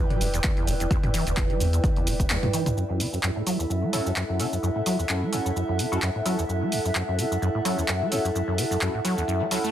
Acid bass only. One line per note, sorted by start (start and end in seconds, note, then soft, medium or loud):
0.00 0.12 E2 medium
0.10 0.22 G3 medium
0.21 0.28 E2 loud
0.34 0.39 E2 medium
0.44 0.51 E2 medium
0.57 0.69 E2 medium
0.67 0.74 B2 loud
0.80 0.86 E2 medium
0.91 0.98 E2 loud
1.04 1.09 F#2 medium
1.14 1.25 E3 loud
1.27 1.33 D2 medium
1.37 1.51 E2 medium
1.50 1.62 G3 medium
1.60 1.68 E2 loud
1.73 1.79 E2 medium
1.84 1.91 E2 medium
1.96 2.09 E2 medium
2.07 2.14 B2 loud
2.20 2.26 E2 medium
2.30 2.37 E2 loud
2.43 2.49 F#2 medium
2.53 2.64 E3 loud
2.66 2.72 D2 medium
2.77 2.84 F#2 medium
2.90 3.01 F#2 medium
3.00 3.07 C#3 medium
3.13 3.19 F#2 medium
3.23 3.30 F#2 loud
3.36 3.42 A2 medium
3.47 3.57 F#3 loud
3.59 3.65 E2 medium
3.70 3.84 F#2 medium
3.83 3.95 A3 medium
3.93 4.00 F#2 medium
4.06 4.12 F#2 medium
4.16 4.23 F#2 medium
4.29 4.41 F#2 medium
4.40 4.47 C#3 loud
4.52 4.58 F#2 medium
4.63 4.70 F#2 loud
4.76 4.81 A2 medium
4.86 4.97 F#3 loud
4.99 5.05 E2 medium
5.09 5.24 F#2 medium
5.22 5.34 A3 medium
5.33 5.40 F#2 loud
5.45 5.51 F#2 medium
5.56 5.63 F#2 medium
5.69 5.81 F#2 medium
5.79 5.86 C#3 loud
5.92 5.98 F#2 medium
6.02 6.09 F#2 loud
6.15 6.21 A2 medium
6.26 6.36 F#3 loud
6.38 6.44 E2 medium
6.49 6.63 F#2 medium
6.62 6.74 A3 medium
6.72 6.79 F#2 loud
6.85 6.91 F#2 medium
6.95 7.02 F#2 medium
7.08 7.20 F#2 medium
7.19 7.26 C#3 loud
7.31 7.37 F#2 medium
7.42 7.49 F#2 loud
7.55 7.60 A2 medium
7.65 7.76 F#3 loud
7.78 7.84 E2 medium
7.88 8.03 F#2 medium
8.01 8.13 A3 medium
8.12 8.19 F#2 loud
8.24 8.30 F#2 medium
8.35 8.42 F#2 medium
8.48 8.60 F#2 medium
8.58 8.65 C#3 loud
8.71 8.77 F#2 medium
8.81 8.88 F#2 loud
8.94 9.00 A2 medium
9.05 9.15 F#3 loud
9.17 9.23 E2 medium
9.28 9.42 F#2 medium
9.41 9.46 A3 medium
9.51 9.58 F#3 medium
9.64 9.70 A3 medium